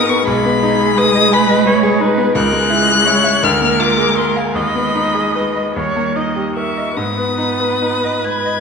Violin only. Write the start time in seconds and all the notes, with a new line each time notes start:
Already playing: D#6
0.09 C#6
0.28 B5
0.98 D#6
1.33 B5
2.35 F#6
3.44 F6
3.80 D6
4.17 C6
4.37 G#5
4.56 B5
6.56 C#6
6.97 D#6
8.24 G#6